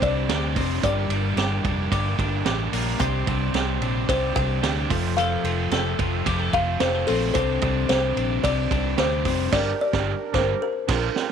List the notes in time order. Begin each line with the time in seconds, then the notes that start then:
Already playing: C3 G4 C5
0.00 C2 C4 D4 G4 C5 D5, kick, ride
0.05 G3
0.28 D2 C3 G3 C4 D4 G4, snare, ride
0.56 F1 G3 C4 D4, kick, open hi-hat, ride
0.81 G1 G2 D3 G3 A#3 D4 G4 A#4 D5, kick, hi-hat pedal, ride
1.09 G1 G3 A#3 D4, ride
1.36 G1 G2 D3 G3 A#3 D4 G4, snare, ride
1.63 F1 G3 A#3 D4, kick, ride
1.92 G1 D3 G3 A#3 D4 G4, kick, snare, ride
2.17 G1 G3 A#3 D4, kick, ride
2.46 A1 G2 D3 G3 A#3 D4 G4, snare, ride
2.72 A#1 G3 A#3 D4, open hi-hat, ride
2.99 C2 C3 G3 C4 D4 G4 C5 G5, kick, hi-hat pedal, ride
3.26 C2 G3 C4 D4, kick, ride
3.53 C2 C3 G3 C4 D4 G4, snare, ride
3.81 A#1 G3 C4 D4, ride
4.08 C2 C3 G3 C4 D4 G4 C5, kick, snare, ride
4.35 C2 G3 C4 D4 G5, kick, ride
4.62 D2 C3 G3 C4 D4 G4, snare, ride
4.88 F1 F3 A3 C4 F4 A4 C5, kick, open hi-hat, ride
5.16 F2 C3 F3 A3 C4 A4 F5, hi-hat pedal, ride
5.44 F1 F3 A3 C4 F4, ride
5.71 F1 F2 C3 F3 A3 C4 A4, snare, ride
5.99 F1 F3 A3 C4 F4, kick, ride
6.26 F1 C3 F3 A3 C4 G4, kick, snare, ride
6.40 A4
6.53 F1 F3 A3 C4 F4 F5, kick, ride
6.80 F1 F2 C3 F3 A3 C4 G4 C5, snare, ride
6.95 A4
7.07 A#1 F3 A3 C4 A4, open hi-hat, ride
7.34 C2 C3 G3 C4 D4 G4 C5, kick, hi-hat pedal, ride
7.62 C2 G3 C4 D4, kick, ride
7.89 C2 C3 G3 C4 D4 G4 C5, snare, ride
8.16 A#1 G3 C4 D4, ride
8.44 C2 C3 G3 C4 D4 G4 D5, kick, ride
8.71 C2 G3 C4 D4, kick, ride
8.98 D2 C3 G3 C4 D4 G4 C5, snare, ride
9.25 F1 G3 C4 D4, kick, open hi-hat, ride
9.52 G1 G2 D3 G3 A#3 D4 G4 A#4 D5, kick, snare, crash
9.81 D5
9.92 G1 G3 A#3 D4 G4 A#4, kick, snare
10.33 G1 G3 A#3 D4 G4 C5, kick, snare
10.37 A#4
10.62 A#4
10.87 A#1 F3 A#3 D4 F4 A#4, kick, snare, crash
11.16 snare